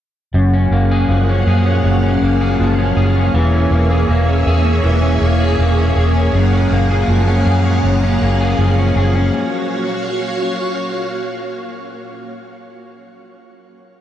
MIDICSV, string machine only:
0, 0, Header, 1, 2, 480
1, 0, Start_track
1, 0, Tempo, 750000
1, 219, Time_signature, 4, 2, 24, 8
1, 8966, End_track
2, 0, Start_track
2, 0, Title_t, "String machine"
2, 0, Program_c, 0, 50
2, 213, Note_on_c, 0, 58, 79
2, 214, Note_on_c, 0, 68, 73
2, 215, Note_on_c, 0, 77, 70
2, 215, Note_on_c, 0, 78, 84
2, 2117, Note_off_c, 0, 58, 0
2, 2118, Note_off_c, 0, 77, 0
2, 2118, Note_off_c, 0, 78, 0
2, 2137, Note_on_c, 0, 76, 91
2, 2139, Note_on_c, 0, 58, 80
2, 2139, Note_on_c, 0, 73, 72
2, 4039, Note_off_c, 0, 76, 0
2, 4040, Note_off_c, 0, 73, 0
2, 4056, Note_on_c, 0, 77, 67
2, 4059, Note_on_c, 0, 78, 84
2, 5951, Note_off_c, 0, 68, 0
2, 5958, Note_off_c, 0, 77, 0
2, 5960, Note_off_c, 0, 78, 0
2, 5977, Note_on_c, 0, 77, 85
2, 5981, Note_on_c, 0, 73, 76
2, 5986, Note_on_c, 0, 66, 71
2, 7874, Note_off_c, 0, 58, 0
2, 7879, Note_off_c, 0, 77, 0
2, 7881, Note_off_c, 0, 73, 0
2, 7884, Note_off_c, 0, 66, 0
2, 8966, End_track
0, 0, End_of_file